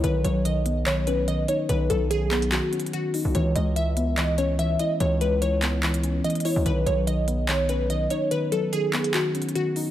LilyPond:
<<
  \new Staff \with { instrumentName = "Synth pluck" } { \time 4/4 \key b \mixolydian \tempo 4 = 145 b'8 cis''8 dis''4 cis''8 b'8 dis''8 cis''8 | b'8 a'8 gis'4 fis'4 fis'4 | cis''8 dis''8 e''4 dis''8 cis''8 e''8 dis''8 | cis''8 b'8 cis''2 dis''8 cis''8 |
b'8 cis''8 dis''4 cis''8 b'8 dis''8 cis''8 | b'8 a'8 gis'4 fis'4 fis'4 | }
  \new Staff \with { instrumentName = "Synth keys" } { \clef bass \time 4/4 \key b \mixolydian dis8 fis8 dis8 b8 dis8 cis'8 dis8 dis'8 | dis8 fis8 dis8 b8 dis8 cis'8 dis8 dis'8 | e8 gis8 e8 b8 e8 cis'8 e8 e'8 | e8 gis8 e8 b8 e8 cis'8 e8 e'8 |
dis8 fis8 dis8 b8 dis8 cis'8 dis8 dis'8 | dis8 fis8 dis8 b8 dis8 cis'8 dis8 dis'8 | }
  \new Staff \with { instrumentName = "808-style bass" } { \clef bass \time 4/4 \key b \mixolydian b,,8 b,,2. r8 | b,,8 b,,4.~ b,,16 r4. b,,16 | cis,8 cis,2. r8 | cis,2. r8. cis,16 |
b,,8 b,,2. r8 | r1 | }
  \new DrumStaff \with { instrumentName = "Drums" } \drummode { \time 4/4 hh8 hh8 hh8 hh8 <hc hh>8 hh8 hh8 hh8 | hh8 hh8 hh8 <hc hh>16 hh16 \tuplet 3/2 { <hc hh>16 r16 r16 hh16 hh16 hh16 } hh8 hho8 | hh8 hh8 hh8 hh8 <hc hh>8 hh8 hh8 hh8 | hh8 hh8 hh8 <hc hh>8 <hc hh>16 hh16 hh8 hh32 hh32 hh32 hh32 hho8 |
hh8 hh8 hh8 hh8 <hc hh>8 hh8 hh8 hh8 | hh8 hh8 hh8 <hc hh>16 hh16 \tuplet 3/2 { <hc hh>16 r16 r16 hh16 hh16 hh16 } hh8 hho8 | }
>>